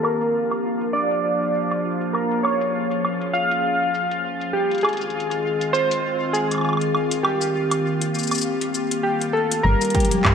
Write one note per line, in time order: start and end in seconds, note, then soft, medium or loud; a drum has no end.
0.00 4.51 A#3 medium
0.00 9.66 F4 medium
0.00 2.11 G4 medium
0.00 0.90 A#4 medium
0.00 9.66 F5 medium
0.05 4.51 F3 medium
0.05 2.13 D4 medium
0.05 high woodblock medium
0.21 closed hi-hat soft
0.21 cabasa medium
0.51 closed hi-hat medium
0.51 high woodblock soft
0.81 closed hi-hat soft
0.93 1.80 D5 medium
0.93 cabasa medium
1.11 closed hi-hat medium
1.55 cabasa medium
1.71 closed hi-hat medium
1.71 high woodblock soft
2.01 closed hi-hat soft
2.13 4.52 C#4 medium
2.13 4.52 G#4 medium
2.13 2.42 A#4 medium
2.13 high woodblock soft
2.31 closed hi-hat medium
2.43 3.37 C#5 medium
2.43 high woodblock medium
2.61 closed hi-hat soft
2.61 cabasa medium
2.91 closed hi-hat medium
3.05 high woodblock soft
3.21 closed hi-hat soft
3.33 4.20 F5 loud
3.33 cabasa medium
3.51 closed hi-hat medium
3.95 cabasa medium
4.11 closed hi-hat medium
4.41 closed hi-hat soft
4.53 9.61 D#3 medium
4.53 7.22 G#3 medium
4.53 9.61 C4 medium
4.53 7.22 F4 medium
4.53 4.85 G4 medium
4.71 closed hi-hat soft
4.75 closed hi-hat soft
4.78 closed hi-hat soft
4.81 5.77 G#4 medium
4.81 closed hi-hat soft
4.85 closed hi-hat soft
4.85 high woodblock medium
4.89 closed hi-hat soft
4.93 closed hi-hat soft
4.97 closed hi-hat medium
5.01 cabasa medium
5.10 closed hi-hat soft
5.20 closed hi-hat soft
5.31 closed hi-hat medium
5.61 closed hi-hat soft
5.73 6.30 C5 loud
5.73 cabasa medium
5.91 closed hi-hat medium
6.33 7.27 G#4 medium
6.33 cabasa medium
6.51 closed hi-hat medium
6.51 high woodblock soft
6.55 high woodblock soft
6.58 high woodblock soft
6.61 high woodblock soft
6.65 high woodblock soft
6.69 high woodblock soft
6.73 high woodblock soft
6.77 high woodblock soft
6.81 closed hi-hat soft
6.95 high woodblock soft
7.11 closed hi-hat medium
7.23 9.62 A#3 medium
7.23 9.00 G4 medium
7.23 9.62 G4 medium
7.23 high woodblock medium
7.41 cabasa medium
7.71 closed hi-hat medium
7.71 high woodblock medium
8.01 closed hi-hat medium
8.15 cabasa soft
8.19 cabasa soft
8.23 cabasa soft
8.27 cabasa soft
8.31 cabasa soft
8.31 high woodblock soft
8.35 cabasa soft
8.38 cabasa soft
8.41 cabasa medium
8.61 closed hi-hat soft
8.75 cabasa medium
8.91 closed hi-hat medium
9.03 9.35 G4 medium
9.21 closed hi-hat soft
9.33 9.65 A4 medium
9.52 closed hi-hat medium
9.63 9.75 G1 loud
9.63 10.35 F3 medium
9.63 9.79 G3 medium
9.63 10.35 A#3 medium
9.63 10.35 D4 medium
9.63 10.35 A#4 loud
9.63 10.35 G5 medium
9.63 10.35 A#6 medium
9.81 closed hi-hat soft
9.81 cabasa medium
9.85 closed hi-hat soft
9.90 closed hi-hat soft
9.95 10.11 G4 loud
9.95 kick loud
9.95 closed hi-hat soft
9.95 high tom soft
9.99 closed hi-hat soft
9.99 high tom soft
10.03 closed hi-hat soft
10.03 high tom soft
10.07 high tom medium
10.11 closed hi-hat medium
10.11 high tom medium
10.15 high tom medium
10.18 high tom medium
10.21 10.35 G2 medium
10.21 kick loud
10.21 clap loud
10.21 high tom medium
10.21 high woodblock medium